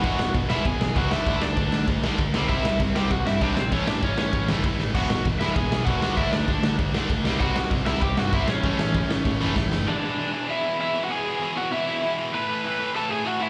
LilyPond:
<<
  \new Staff \with { instrumentName = "Overdriven electric guitar" } { \time 4/4 \key a \major \tempo 4 = 195 <fis' fis''>4 r8 <e' e''>8 <gis' gis''>4 <fis' fis''>8 <e' e''>8~ | <e' e''>8 <d' d''>4. r2 | <e' e''>4 r8 <g' g''>8 <fis' fis''>8 <e' e''>8 <d' d''>8 <c' c''>8 | <cis' cis''>8 <d' d''>8 <cis' cis''>8 <cis' cis''>4 r4. |
<fis' fis''>4 r8 <e' e''>8 <gis' gis''>4 <fis' fis''>4 | <e' e''>8 <d' d''>4. r2 | <fis' fis''>4 r8 <e' e''>8 <g' g''>8 <fis' fis''>8 <e' e''>8 <cis' cis''>8~ | <cis' cis''>2. r4 |
<d' d''>2 <e' e''>4 <e' e''>8. <fis' fis''>16 | <gis' gis''>4. <fis' fis''>8 <e' e''>4. r8 | <b' b''>2 <a' a''>8 <gis' gis''>8 <fis' fis''>8 <e' e''>8 | }
  \new Staff \with { instrumentName = "Distorted electric guitar" } { \clef bass \time 4/4 \key a \major <e, b, e>4. <e, b, e>4. <e, b, e>8 <d a d'>8~ | <d a d'>4 <d a d'>4. <d a d'>4 <c g c'>8~ | <c g c'>4 <c g c'>4. <c g c'>4 r8 | <a, e a>4. <a, e a>4. <a, e a>4 |
<e, b, e>4. <e, b, e>4. <e, b, e>8 <d a d'>8~ | <d a d'>4 <d a d'>4. <d a d'>4 <c g c'>8~ | <c g c'>4 <c g c'>4. <c g c'>4 r8 | <a, e a>4. <a, e a>4. <a, e a>4 |
r1 | r1 | r1 | }
  \new Staff \with { instrumentName = "Distorted electric guitar" } { \clef bass \time 4/4 \key a \major <e, b, e>8 <e, b,>8 <e, b,>8 <e, b, e>8 <e, b,>8 <e, b,>8 <e, b, e>8 <d a d'>8 | <d a d'>8 <d a>8 <d a>8 <d a>8 <d a>8 <d a d'>8 <d a>8 <c g c'>8 | <c g c'>8 <c g>8 <c g>8 <c g c'>8 <c g>8 <c g>8 <c g c'>8 <c g>8 | <a, e a>8 <a, e>8 <a, e>8 <a, e>8 <a, e>8 <a, e a>8 <a, e>8 <a, e>8 |
<e, b, e>8 <e, b,>8 <e, b,>8 <e, b, e>8 <e, b,>8 <e, b,>8 <e, b, e>8 <d a d'>8 | <d a d'>8 <d a>8 <d a>8 <d a>8 <d a>8 <d a d'>8 <d a>8 <c g c'>8 | <c g c'>8 <c g>8 <c g>8 <c g c'>8 <c g>8 <c g>8 <c g c'>8 <c g>8 | <a, e a>8 <a, e>8 <a, e>8 <a, e>8 <a, e>8 <a, e a>8 <a, e>8 <a, e>8 |
<e, b, e>8 <e, b, e>8 <e, b, e>8 <e, b, e>8 <e, b, e>8 <e, b, e>8 <e, b, e>8 <e, b, e>8 | <e, b, e>8 <e, b, e>8 <e, b, e>8 <e, b, e>8 <e, b, e>8 <e, b, e>8 <e, b, e>8 <e, b, e>8 | <a, e a>8 <a, e a>8 <a, e a>8 <a, e a>8 <a, e a>8 <a, e a>8 <a, e a>8 <a, e a>8 | }
  \new Staff \with { instrumentName = "Distorted electric guitar" } { \clef bass \time 4/4 \key a \major <e, b, e>8 <e, b,>8 <e, b,>8 <e, b, e>8 <e, b,>8 <e, b,>8 <e, b, e>8 <d a d'>8 | <d a d'>8 <d a>8 <d a>8 <d a>8 <d a>8 <d a d'>8 <d a>8 <c g c'>8 | <c g c'>8 <c g>8 <c g>8 <c g c'>8 <c g>8 <c g>8 <c g c'>8 <c g>8 | <a, e a>8 <a, e>8 <a, e>8 <a, e>8 <a, e>8 <a, e a>8 <a, e>8 <a, e>8 |
<e, b, e>8 <e, b,>8 <e, b,>8 <e, b, e>8 <e, b,>8 <e, b,>8 <e, b, e>8 <d a d'>8 | <d a d'>8 <d a>8 <d a>8 <d a>8 <d a>8 <d a d'>8 <d a>8 <c g c'>8 | <c g c'>8 <c g>8 <c g>8 <c g c'>8 <c g>8 <c g>8 <c g c'>8 <c g>8 | <a, e a>8 <a, e>8 <a, e>8 <a, e>8 <a, e>8 <a, e a>8 <a, e>8 <a, e>8 |
r1 | r1 | r1 | }
  \new Staff \with { instrumentName = "Picked electric bass" } { \clef bass \time 4/4 \key a \major e,,8 e,,8 e,,8 e,,8 e,,8 b,,8 cis,8 d,8 | d,8 d,8 d,8 d8 d,8 b,,8 d8 c,8 | c,8 c,8 c,8 c,8 c,8 g,8 c,8 a,,8 | a,,8 a,,8 a,,8 a,8 a,,8 fis,,8 a,8 a,,8 |
e,,8 e,,8 e,,8 e,,8 e,,8 b,,8 e,,8 d,8 | d,8 d,8 d,8 d8 d,8 b,,8 cis,8 c,8 | c,8 c,8 c,8 c,8 c,8 g,8 c,8 a,,8 | a,,8 a,,8 a,,8 a,8 a,,8 fis,,8 a,8 fis,,8 |
r1 | r1 | r1 | }
  \new DrumStaff \with { instrumentName = "Drums" } \drummode { \time 4/4 <bd cymr>8 sn8 <bd cymr>8 sn8 <bd cymr>8 sn8 <bd cymr>8 sn8 | <bd cymr>8 sn8 <bd cymr>8 sn8 <bd cymr>8 sn8 <bd cymr>8 sn8 | <bd cymr>8 sn8 <bd cymr>8 sn8 <bd cymr>8 sn8 <bd cymr>8 sn8 | <bd cymr>8 sn8 <bd cymr>8 sn8 <bd cymr>8 sn8 <bd cymr>8 sn8 |
<cymc bd>8 sn8 <bd cymr>8 sn8 <bd cymr>8 sn8 <bd cymr>8 sn8 | <bd cymr>8 sn8 <bd cymr>8 sn8 <bd cymr>8 sn8 <bd cymr>8 sn8 | <bd cymr>8 sn8 <bd cymr>8 sn8 <bd cymr>8 sn8 <bd cymr>8 sn8 | <bd cymr>8 sn8 <bd cymr>8 sn8 <bd sn>8 sn8 <bd sn>8 sn8 |
r4 r4 r4 r4 | r4 r4 r4 r4 | r4 r4 r4 r4 | }
>>